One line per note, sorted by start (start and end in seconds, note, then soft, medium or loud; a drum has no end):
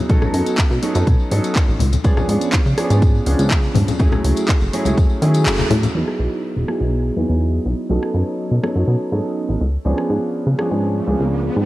0.09 0.18 B1 loud
0.09 0.80 F#3 medium
0.09 0.80 B3 medium
0.09 0.80 C#4 medium
0.09 0.80 D#4 medium
0.09 0.80 A4 loud
0.09 kick loud
0.09 closed hi-hat medium
0.09 tambourine medium
0.22 cross-stick medium
0.22 tambourine soft
0.22 low conga medium
0.34 0.42 F#2 loud
0.34 open hi-hat loud
0.46 closed hi-hat medium
0.46 tambourine medium
0.58 kick loud
0.58 clap loud
0.58 closed hi-hat medium
0.71 0.79 B2 medium
0.71 tambourine soft
0.82 1.29 F#3 medium
0.82 1.29 B3 medium
0.82 1.29 C#4 medium
0.82 1.29 D#4 medium
0.82 1.29 A4 medium
0.82 open hi-hat loud
0.95 1.03 F#2 loud
0.95 closed hi-hat medium
0.95 tambourine medium
1.07 1.15 B2 loud
1.07 kick loud
1.07 closed hi-hat medium
1.07 tambourine medium
1.19 tambourine soft
1.31 1.40 G#2 medium
1.31 1.79 F#3 medium
1.31 1.79 B3 medium
1.31 1.79 C#4 medium
1.31 1.79 D#4 medium
1.31 1.79 A4 medium
1.31 open hi-hat loud
1.44 closed hi-hat medium
1.44 tambourine medium
1.56 kick loud
1.56 clap loud
1.56 closed hi-hat soft
1.56 tambourine medium
1.68 1.76 A1 medium
1.68 tambourine soft
1.79 1.97 C#2 medium
1.79 open hi-hat loud
1.79 low conga medium
1.93 closed hi-hat medium
1.93 tambourine medium
1.93 low conga medium
2.04 2.13 C#2 loud
2.04 2.75 F3 loud
2.04 2.75 B3 medium
2.04 2.75 C#4 medium
2.04 2.75 D4 medium
2.04 2.75 G#4 loud
2.04 kick loud
2.04 closed hi-hat medium
2.04 tambourine medium
2.17 cross-stick medium
2.17 tambourine soft
2.17 low conga medium
2.29 2.37 G#2 loud
2.29 open hi-hat loud
2.41 closed hi-hat medium
2.41 tambourine medium
2.53 kick loud
2.53 clap loud
2.53 closed hi-hat soft
2.53 tambourine medium
2.66 2.74 C#3 medium
2.66 tambourine soft
2.78 3.24 F3 medium
2.78 3.24 B3 medium
2.78 3.24 C#4 medium
2.78 3.24 D4 medium
2.78 3.24 G#4 medium
2.78 cross-stick medium
2.78 open hi-hat loud
2.90 3.20 G#2 loud
2.90 closed hi-hat medium
2.90 tambourine medium
3.02 kick loud
3.02 closed hi-hat medium
3.02 tambourine medium
3.15 tambourine soft
3.26 3.35 C#2 medium
3.26 3.97 F3 medium
3.26 3.97 B3 medium
3.26 3.97 C#4 medium
3.26 3.97 D4 medium
3.26 3.97 G#4 medium
3.26 open hi-hat loud
3.39 3.69 C#2 medium
3.39 closed hi-hat medium
3.39 tambourine medium
3.50 kick loud
3.50 clap loud
3.50 closed hi-hat soft
3.50 tambourine medium
3.64 tambourine soft
3.75 3.84 G#2 loud
3.75 open hi-hat loud
3.75 high conga medium
3.75 low conga medium
3.88 closed hi-hat medium
3.88 tambourine medium
3.88 low conga medium
3.99 4.08 F#2 medium
3.99 4.70 F#3 loud
3.99 4.70 A3 medium
3.99 4.70 C#4 medium
3.99 4.71 E4 medium
3.99 4.71 G#4 loud
3.99 kick loud
3.99 closed hi-hat medium
3.99 tambourine medium
4.12 cross-stick medium
4.12 tambourine soft
4.12 low conga loud
4.24 4.33 C#2 loud
4.24 open hi-hat loud
4.36 closed hi-hat medium
4.36 tambourine medium
4.48 kick loud
4.48 clap loud
4.48 closed hi-hat medium
4.61 4.69 F#1 medium
4.61 tambourine soft
4.73 5.19 F#3 medium
4.73 5.19 A3 medium
4.73 5.19 C#4 medium
4.73 5.19 E4 medium
4.73 5.19 G#4 loud
4.73 open hi-hat loud
4.85 4.93 C#2 loud
4.85 closed hi-hat medium
4.85 tambourine medium
4.85 high conga medium
4.98 5.06 F#1 loud
4.98 kick loud
4.98 closed hi-hat medium
4.98 tambourine medium
5.10 tambourine soft
5.21 5.48 D#3 medium
5.21 5.92 F#3 medium
5.21 5.92 A3 medium
5.21 5.92 C#4 medium
5.21 5.93 E4 medium
5.21 5.93 G#4 medium
5.21 open hi-hat loud
5.34 closed hi-hat medium
5.34 tambourine medium
5.46 5.63 F#1 medium
5.46 clap loud
5.46 open hi-hat medium
5.46 tambourine medium
5.59 tambourine soft
5.59 high conga medium
5.70 5.87 A2 medium
5.70 open hi-hat loud
5.70 low conga loud
5.83 closed hi-hat medium
5.83 tambourine medium
5.83 low conga medium
5.94 6.03 E2 medium
5.94 6.65 F#3 medium
5.94 6.65 B3 medium
5.94 6.65 D#4 medium
5.94 6.66 E4 medium
5.94 6.66 G#4 loud
6.08 cross-stick medium
6.19 6.28 B1 loud
6.56 6.64 E1 medium
6.68 7.14 F#3 medium
6.68 7.14 B3 medium
6.68 7.14 D#4 medium
6.68 7.14 E4 medium
6.68 7.14 G#4 medium
6.68 cross-stick medium
6.81 7.11 B1 loud
7.16 7.25 E2 medium
7.16 7.87 F#3 medium
7.16 7.87 B3 medium
7.16 7.87 D#4 medium
7.16 7.88 E4 medium
7.16 7.88 G#4 medium
7.29 7.59 E2 medium
7.66 7.74 B1 medium
7.89 7.99 B1 medium
7.89 8.60 F#3 medium
7.89 8.60 B3 medium
7.89 8.60 C#4 medium
7.89 8.61 D#4 medium
7.89 8.61 A4 loud
8.03 cross-stick medium
8.14 8.23 F#2 loud
8.51 8.59 B2 medium
8.63 9.09 F#3 medium
8.63 9.09 B3 medium
8.63 9.09 C#4 medium
8.63 9.09 D#4 medium
8.63 9.09 A4 medium
8.63 cross-stick medium
8.76 8.84 F#2 loud
8.87 8.96 B2 medium
9.12 9.20 G#2 medium
9.12 9.59 F#3 medium
9.12 9.59 B3 medium
9.12 9.60 C#4 medium
9.12 9.60 D#4 medium
9.12 9.60 A4 medium
9.49 9.57 A1 medium
9.61 9.77 C#2 medium
9.85 9.94 C#2 loud
9.85 10.55 F3 medium
9.85 10.55 B3 medium
9.85 10.56 C#4 medium
9.85 10.56 D4 medium
9.85 10.56 G#4 loud
9.85 riser medium
9.98 cross-stick medium
10.10 10.18 G#2 medium
10.47 10.55 C#3 medium
10.58 11.04 F3 medium
10.58 11.04 B3 medium
10.58 11.05 C#4 medium
10.58 11.05 D4 medium
10.58 11.05 G#4 medium
10.58 cross-stick medium
10.71 11.01 G#2 loud
11.07 11.16 C#2 medium
11.07 11.65 F3 medium
11.07 11.65 B3 medium
11.07 11.65 C#4 medium
11.07 11.65 D4 medium
11.07 11.65 G#4 medium
11.20 11.50 C#2 medium
11.56 11.65 G#2 loud